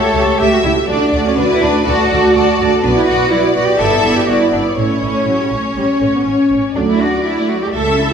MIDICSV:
0, 0, Header, 1, 6, 480
1, 0, Start_track
1, 0, Key_signature, 2, "major"
1, 0, Tempo, 485830
1, 873, Time_signature, 4, 2, 24, 8
1, 4226, Tempo, 494641
1, 7968, End_track
2, 0, Start_track
2, 0, Title_t, "Violin section"
2, 0, Program_c, 0, 48
2, 0, Note_on_c, 0, 76, 45
2, 145, Note_off_c, 0, 76, 0
2, 159, Note_on_c, 0, 76, 43
2, 382, Note_off_c, 0, 76, 0
2, 394, Note_on_c, 0, 76, 48
2, 628, Note_off_c, 0, 76, 0
2, 641, Note_on_c, 0, 76, 47
2, 873, Note_off_c, 0, 76, 0
2, 874, Note_on_c, 0, 74, 48
2, 1104, Note_off_c, 0, 74, 0
2, 1116, Note_on_c, 0, 74, 46
2, 1343, Note_off_c, 0, 74, 0
2, 1355, Note_on_c, 0, 74, 51
2, 1587, Note_off_c, 0, 74, 0
2, 1599, Note_on_c, 0, 74, 49
2, 1820, Note_off_c, 0, 74, 0
2, 1832, Note_on_c, 0, 74, 61
2, 2071, Note_off_c, 0, 74, 0
2, 2081, Note_on_c, 0, 74, 49
2, 2310, Note_off_c, 0, 74, 0
2, 2322, Note_on_c, 0, 74, 55
2, 2552, Note_off_c, 0, 74, 0
2, 2568, Note_on_c, 0, 74, 51
2, 2791, Note_off_c, 0, 74, 0
2, 2803, Note_on_c, 0, 74, 53
2, 3029, Note_off_c, 0, 74, 0
2, 3041, Note_on_c, 0, 74, 45
2, 3269, Note_off_c, 0, 74, 0
2, 3281, Note_on_c, 0, 74, 45
2, 3485, Note_off_c, 0, 74, 0
2, 3497, Note_on_c, 0, 74, 42
2, 3735, Note_off_c, 0, 74, 0
2, 3752, Note_on_c, 0, 74, 44
2, 3984, Note_off_c, 0, 74, 0
2, 4004, Note_on_c, 0, 74, 40
2, 4231, Note_off_c, 0, 74, 0
2, 4246, Note_on_c, 0, 74, 38
2, 4470, Note_off_c, 0, 74, 0
2, 4483, Note_on_c, 0, 74, 36
2, 4709, Note_off_c, 0, 74, 0
2, 4709, Note_on_c, 0, 73, 35
2, 4942, Note_off_c, 0, 73, 0
2, 4952, Note_on_c, 0, 73, 29
2, 5184, Note_off_c, 0, 73, 0
2, 5197, Note_on_c, 0, 73, 32
2, 5427, Note_off_c, 0, 73, 0
2, 5440, Note_on_c, 0, 73, 31
2, 5670, Note_off_c, 0, 73, 0
2, 5690, Note_on_c, 0, 73, 36
2, 5915, Note_off_c, 0, 73, 0
2, 5929, Note_on_c, 0, 73, 30
2, 6149, Note_off_c, 0, 73, 0
2, 6161, Note_on_c, 0, 73, 35
2, 6393, Note_off_c, 0, 73, 0
2, 6405, Note_on_c, 0, 73, 31
2, 6631, Note_on_c, 0, 74, 39
2, 6636, Note_off_c, 0, 73, 0
2, 7550, Note_off_c, 0, 74, 0
2, 7593, Note_on_c, 0, 76, 41
2, 7968, Note_off_c, 0, 76, 0
2, 7968, End_track
3, 0, Start_track
3, 0, Title_t, "Violin section"
3, 0, Program_c, 1, 48
3, 0, Note_on_c, 1, 73, 57
3, 389, Note_off_c, 1, 73, 0
3, 398, Note_on_c, 1, 76, 51
3, 868, Note_off_c, 1, 76, 0
3, 875, Note_on_c, 1, 74, 54
3, 1350, Note_off_c, 1, 74, 0
3, 1361, Note_on_c, 1, 71, 62
3, 1843, Note_off_c, 1, 71, 0
3, 1848, Note_on_c, 1, 69, 53
3, 2305, Note_off_c, 1, 69, 0
3, 2317, Note_on_c, 1, 69, 54
3, 2783, Note_off_c, 1, 69, 0
3, 2786, Note_on_c, 1, 71, 58
3, 3265, Note_off_c, 1, 71, 0
3, 3273, Note_on_c, 1, 74, 60
3, 3737, Note_off_c, 1, 74, 0
3, 3745, Note_on_c, 1, 76, 63
3, 4227, Note_off_c, 1, 76, 0
3, 4228, Note_on_c, 1, 74, 45
3, 4696, Note_off_c, 1, 74, 0
3, 4710, Note_on_c, 1, 73, 43
3, 6361, Note_off_c, 1, 73, 0
3, 7583, Note_on_c, 1, 76, 55
3, 7968, Note_off_c, 1, 76, 0
3, 7968, End_track
4, 0, Start_track
4, 0, Title_t, "Cello section"
4, 0, Program_c, 2, 48
4, 0, Note_on_c, 2, 69, 69
4, 377, Note_off_c, 2, 69, 0
4, 384, Note_on_c, 2, 67, 75
4, 507, Note_off_c, 2, 67, 0
4, 518, Note_on_c, 2, 66, 63
4, 564, Note_off_c, 2, 66, 0
4, 630, Note_on_c, 2, 64, 58
4, 709, Note_off_c, 2, 64, 0
4, 875, Note_on_c, 2, 62, 72
4, 1232, Note_off_c, 2, 62, 0
4, 1248, Note_on_c, 2, 61, 63
4, 1295, Note_off_c, 2, 61, 0
4, 1358, Note_on_c, 2, 62, 73
4, 1478, Note_off_c, 2, 62, 0
4, 1490, Note_on_c, 2, 64, 73
4, 1601, Note_on_c, 2, 62, 68
4, 1604, Note_off_c, 2, 64, 0
4, 1840, Note_on_c, 2, 66, 75
4, 1842, Note_off_c, 2, 62, 0
4, 2540, Note_off_c, 2, 66, 0
4, 2798, Note_on_c, 2, 62, 69
4, 2845, Note_off_c, 2, 62, 0
4, 2926, Note_on_c, 2, 64, 68
4, 3032, Note_on_c, 2, 66, 77
4, 3036, Note_off_c, 2, 64, 0
4, 3264, Note_off_c, 2, 66, 0
4, 3267, Note_on_c, 2, 64, 67
4, 3504, Note_off_c, 2, 64, 0
4, 3506, Note_on_c, 2, 66, 66
4, 3622, Note_off_c, 2, 66, 0
4, 3627, Note_on_c, 2, 67, 66
4, 3745, Note_off_c, 2, 67, 0
4, 3745, Note_on_c, 2, 69, 75
4, 4106, Note_off_c, 2, 69, 0
4, 4114, Note_on_c, 2, 67, 52
4, 4223, Note_on_c, 2, 66, 68
4, 4230, Note_off_c, 2, 67, 0
4, 4343, Note_off_c, 2, 66, 0
4, 4349, Note_on_c, 2, 64, 48
4, 4396, Note_off_c, 2, 64, 0
4, 4464, Note_on_c, 2, 62, 48
4, 4541, Note_off_c, 2, 62, 0
4, 4707, Note_on_c, 2, 61, 52
4, 6123, Note_off_c, 2, 61, 0
4, 6631, Note_on_c, 2, 62, 58
4, 6680, Note_off_c, 2, 62, 0
4, 6764, Note_on_c, 2, 64, 56
4, 6875, Note_on_c, 2, 66, 52
4, 6878, Note_off_c, 2, 64, 0
4, 7112, Note_on_c, 2, 64, 55
4, 7115, Note_off_c, 2, 66, 0
4, 7347, Note_off_c, 2, 64, 0
4, 7349, Note_on_c, 2, 66, 55
4, 7470, Note_off_c, 2, 66, 0
4, 7475, Note_on_c, 2, 67, 60
4, 7522, Note_off_c, 2, 67, 0
4, 7585, Note_on_c, 2, 69, 66
4, 7968, Note_off_c, 2, 69, 0
4, 7968, End_track
5, 0, Start_track
5, 0, Title_t, "Viola section"
5, 0, Program_c, 3, 48
5, 0, Note_on_c, 3, 57, 46
5, 0, Note_on_c, 3, 67, 49
5, 135, Note_off_c, 3, 57, 0
5, 136, Note_off_c, 3, 67, 0
5, 147, Note_on_c, 3, 57, 44
5, 148, Note_on_c, 3, 67, 42
5, 376, Note_off_c, 3, 67, 0
5, 377, Note_off_c, 3, 57, 0
5, 388, Note_on_c, 3, 67, 42
5, 389, Note_on_c, 3, 57, 41
5, 622, Note_off_c, 3, 57, 0
5, 623, Note_off_c, 3, 67, 0
5, 634, Note_on_c, 3, 57, 47
5, 635, Note_on_c, 3, 67, 47
5, 861, Note_off_c, 3, 57, 0
5, 870, Note_off_c, 3, 67, 0
5, 873, Note_on_c, 3, 57, 54
5, 873, Note_on_c, 3, 66, 52
5, 1106, Note_off_c, 3, 66, 0
5, 1107, Note_off_c, 3, 57, 0
5, 1118, Note_on_c, 3, 66, 52
5, 1119, Note_on_c, 3, 57, 51
5, 1345, Note_off_c, 3, 57, 0
5, 1348, Note_off_c, 3, 66, 0
5, 1357, Note_on_c, 3, 57, 52
5, 1360, Note_on_c, 3, 66, 47
5, 1588, Note_off_c, 3, 57, 0
5, 1588, Note_off_c, 3, 66, 0
5, 1600, Note_on_c, 3, 57, 45
5, 1600, Note_on_c, 3, 66, 44
5, 1831, Note_off_c, 3, 66, 0
5, 1833, Note_off_c, 3, 57, 0
5, 1843, Note_on_c, 3, 66, 58
5, 1845, Note_on_c, 3, 57, 55
5, 2071, Note_off_c, 3, 57, 0
5, 2073, Note_off_c, 3, 66, 0
5, 2083, Note_on_c, 3, 57, 58
5, 2085, Note_on_c, 3, 66, 58
5, 2303, Note_off_c, 3, 57, 0
5, 2305, Note_off_c, 3, 66, 0
5, 2315, Note_on_c, 3, 57, 52
5, 2317, Note_on_c, 3, 66, 48
5, 2549, Note_off_c, 3, 57, 0
5, 2550, Note_off_c, 3, 66, 0
5, 2560, Note_on_c, 3, 57, 50
5, 2561, Note_on_c, 3, 66, 51
5, 2787, Note_off_c, 3, 66, 0
5, 2791, Note_off_c, 3, 57, 0
5, 2799, Note_on_c, 3, 59, 54
5, 2799, Note_on_c, 3, 66, 52
5, 3026, Note_off_c, 3, 66, 0
5, 3030, Note_off_c, 3, 59, 0
5, 3038, Note_on_c, 3, 66, 51
5, 3041, Note_on_c, 3, 59, 48
5, 3267, Note_off_c, 3, 66, 0
5, 3269, Note_off_c, 3, 59, 0
5, 3281, Note_on_c, 3, 59, 45
5, 3281, Note_on_c, 3, 66, 44
5, 3499, Note_off_c, 3, 59, 0
5, 3501, Note_off_c, 3, 66, 0
5, 3511, Note_on_c, 3, 59, 40
5, 3513, Note_on_c, 3, 66, 41
5, 3731, Note_off_c, 3, 59, 0
5, 3743, Note_off_c, 3, 66, 0
5, 3743, Note_on_c, 3, 59, 44
5, 3745, Note_on_c, 3, 64, 47
5, 3979, Note_off_c, 3, 59, 0
5, 3980, Note_off_c, 3, 64, 0
5, 3991, Note_on_c, 3, 59, 42
5, 3991, Note_on_c, 3, 64, 40
5, 4221, Note_off_c, 3, 59, 0
5, 4222, Note_off_c, 3, 64, 0
5, 4233, Note_on_c, 3, 59, 36
5, 4234, Note_on_c, 3, 64, 35
5, 4463, Note_off_c, 3, 59, 0
5, 4464, Note_off_c, 3, 64, 0
5, 4475, Note_on_c, 3, 64, 36
5, 4477, Note_on_c, 3, 59, 35
5, 4705, Note_off_c, 3, 64, 0
5, 4706, Note_off_c, 3, 59, 0
5, 4723, Note_on_c, 3, 57, 36
5, 4723, Note_on_c, 3, 64, 38
5, 4941, Note_off_c, 3, 64, 0
5, 4943, Note_off_c, 3, 57, 0
5, 4953, Note_on_c, 3, 64, 33
5, 4955, Note_on_c, 3, 57, 35
5, 5184, Note_off_c, 3, 64, 0
5, 5185, Note_off_c, 3, 57, 0
5, 5195, Note_on_c, 3, 54, 38
5, 5241, Note_off_c, 3, 54, 0
5, 5331, Note_on_c, 3, 55, 32
5, 5437, Note_off_c, 3, 55, 0
5, 5441, Note_on_c, 3, 57, 38
5, 5519, Note_off_c, 3, 57, 0
5, 5676, Note_on_c, 3, 55, 43
5, 5754, Note_off_c, 3, 55, 0
5, 5914, Note_on_c, 3, 57, 41
5, 5961, Note_off_c, 3, 57, 0
5, 6041, Note_on_c, 3, 59, 38
5, 6087, Note_off_c, 3, 59, 0
5, 6159, Note_on_c, 3, 61, 39
5, 6629, Note_off_c, 3, 61, 0
5, 6632, Note_on_c, 3, 57, 36
5, 6633, Note_on_c, 3, 54, 39
5, 6746, Note_off_c, 3, 54, 0
5, 6748, Note_off_c, 3, 57, 0
5, 6760, Note_on_c, 3, 57, 41
5, 6873, Note_on_c, 3, 62, 39
5, 6878, Note_off_c, 3, 57, 0
5, 6995, Note_off_c, 3, 62, 0
5, 7003, Note_on_c, 3, 66, 35
5, 7114, Note_on_c, 3, 62, 35
5, 7119, Note_off_c, 3, 66, 0
5, 7234, Note_off_c, 3, 62, 0
5, 7238, Note_on_c, 3, 57, 36
5, 7353, Note_on_c, 3, 54, 38
5, 7355, Note_off_c, 3, 57, 0
5, 7472, Note_off_c, 3, 54, 0
5, 7477, Note_on_c, 3, 57, 41
5, 7579, Note_off_c, 3, 57, 0
5, 7590, Note_on_c, 3, 57, 41
5, 7701, Note_off_c, 3, 57, 0
5, 7719, Note_on_c, 3, 61, 38
5, 7833, Note_off_c, 3, 61, 0
5, 7836, Note_on_c, 3, 64, 43
5, 7950, Note_off_c, 3, 64, 0
5, 7968, End_track
6, 0, Start_track
6, 0, Title_t, "Double bass section"
6, 0, Program_c, 4, 48
6, 142, Note_on_c, 4, 37, 45
6, 222, Note_off_c, 4, 37, 0
6, 386, Note_on_c, 4, 37, 49
6, 465, Note_off_c, 4, 37, 0
6, 626, Note_on_c, 4, 37, 56
6, 705, Note_off_c, 4, 37, 0
6, 873, Note_on_c, 4, 38, 58
6, 952, Note_off_c, 4, 38, 0
6, 1114, Note_on_c, 4, 38, 52
6, 1193, Note_off_c, 4, 38, 0
6, 1360, Note_on_c, 4, 38, 59
6, 1439, Note_off_c, 4, 38, 0
6, 1602, Note_on_c, 4, 38, 49
6, 1681, Note_off_c, 4, 38, 0
6, 1848, Note_on_c, 4, 38, 55
6, 1927, Note_off_c, 4, 38, 0
6, 2088, Note_on_c, 4, 38, 54
6, 2167, Note_off_c, 4, 38, 0
6, 2326, Note_on_c, 4, 38, 51
6, 2405, Note_off_c, 4, 38, 0
6, 2570, Note_on_c, 4, 38, 63
6, 2649, Note_off_c, 4, 38, 0
6, 2805, Note_on_c, 4, 35, 64
6, 2884, Note_off_c, 4, 35, 0
6, 3043, Note_on_c, 4, 35, 47
6, 3122, Note_off_c, 4, 35, 0
6, 3275, Note_on_c, 4, 35, 53
6, 3354, Note_off_c, 4, 35, 0
6, 3514, Note_on_c, 4, 35, 44
6, 3593, Note_off_c, 4, 35, 0
6, 3754, Note_on_c, 4, 31, 49
6, 3834, Note_off_c, 4, 31, 0
6, 3992, Note_on_c, 4, 31, 42
6, 4071, Note_off_c, 4, 31, 0
6, 4236, Note_on_c, 4, 31, 46
6, 4313, Note_off_c, 4, 31, 0
6, 4471, Note_on_c, 4, 31, 44
6, 4548, Note_off_c, 4, 31, 0
6, 4702, Note_on_c, 4, 33, 42
6, 4779, Note_off_c, 4, 33, 0
6, 4944, Note_on_c, 4, 33, 38
6, 5021, Note_off_c, 4, 33, 0
6, 5178, Note_on_c, 4, 33, 37
6, 5256, Note_off_c, 4, 33, 0
6, 5422, Note_on_c, 4, 33, 30
6, 5500, Note_off_c, 4, 33, 0
6, 5661, Note_on_c, 4, 33, 36
6, 5739, Note_off_c, 4, 33, 0
6, 5903, Note_on_c, 4, 33, 33
6, 5980, Note_off_c, 4, 33, 0
6, 6142, Note_on_c, 4, 33, 37
6, 6220, Note_off_c, 4, 33, 0
6, 6389, Note_on_c, 4, 33, 35
6, 6467, Note_off_c, 4, 33, 0
6, 6628, Note_on_c, 4, 38, 47
6, 7033, Note_off_c, 4, 38, 0
6, 7581, Note_on_c, 4, 37, 49
6, 7968, Note_off_c, 4, 37, 0
6, 7968, End_track
0, 0, End_of_file